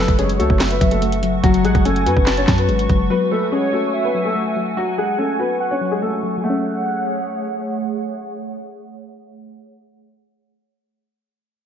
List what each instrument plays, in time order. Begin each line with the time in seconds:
Already playing: analog synth pad F#4 F#5 C#6, grand piano A4
0.00 synth pluck F#3, grand piano A3, soft synth lead B4
0.08 808-style bass F#1, kick, closed hi-hat
0.19 grand piano G#3 G#4, synth pluck C#4, soft synth lead C#5, closed hi-hat
0.29 closed hi-hat
0.39 808-style bass C#2, grand piano A3 A4, synth pluck F#4, closed hi-hat
0.50 808-style bass F#1, kick
0.60 soft synth lead E5, snare, clap, closed hi-hat
0.71 grand piano B3 B4, closed hi-hat
0.81 808-style bass F#1, synth pluck F#3, kick, closed hi-hat
0.91 grand piano A3 A4, closed hi-hat
1.02 synth pluck A3, closed hi-hat
1.12 closed hi-hat
1.23 synth pluck F#3, closed hi-hat
1.44 808-style bass F#1, synth pluck F#3, grand piano F#3 F#4, kick, closed hi-hat
1.54 closed hi-hat
1.64 808-style bass A1, synth pluck F#3, grand piano G#3 G#4, soft synth lead F#5, closed hi-hat
1.75 808-style bass F#1, kick, closed hi-hat
1.85 grand piano A3 A4, synth pluck C#4, soft synth lead G#5, closed hi-hat
1.96 closed hi-hat
2.06 808-style bass F#2, grand piano B3 B4, synth pluck F#4, closed hi-hat
2.17 808-style bass F#1, kick
2.26 soft synth lead A5, snare, clap, closed hi-hat
2.37 grand piano C#4 C#5, closed hi-hat
2.47 808-style bass F#2, synth pluck F#3, kick, snare, clap, closed hi-hat
2.58 grand piano B3 B4, closed hi-hat
2.69 808-style bass G#1, synth pluck G#3, closed hi-hat
2.79 closed hi-hat
2.89 808-style bass F#1, synth pluck F#3, kick, closed hi-hat
3.10 synth pluck F#3, grand piano B3 B4, analog synth pad F#5 G#5
3.31 synth pluck F#3, grand piano A3 A4, soft synth lead B4
3.52 grand piano G#3 G#4, synth pluck C#4, soft synth lead C#5
3.73 grand piano A3 A4, synth pluck F#4
3.94 soft synth lead E5
4.04 grand piano B3 B4
4.15 synth pluck F#3
4.25 grand piano A3 A4
4.36 synth pluck A3
4.56 synth pluck F#3
4.77 synth pluck F#3, grand piano F#3 F#4
4.98 synth pluck F#3, grand piano G#3 G#4, soft synth lead F#5
5.18 grand piano A3 A4, synth pluck C#4, soft synth lead G#5
5.39 grand piano B3 B4, synth pluck F#4
5.60 soft synth lead F#5
5.71 grand piano C#4 C#5
5.81 synth pluck F#3
5.92 grand piano G#3 G#4
6.02 synth pluck A3, grand piano A3 A4
6.23 synth pluck F#3
6.38 synth pluck F#3 G#4
6.44 grand piano A3, analog synth pad A3 G#4 C#5 F#5, synth pluck A3, soft synth lead F#5
6.50 synth pluck C#4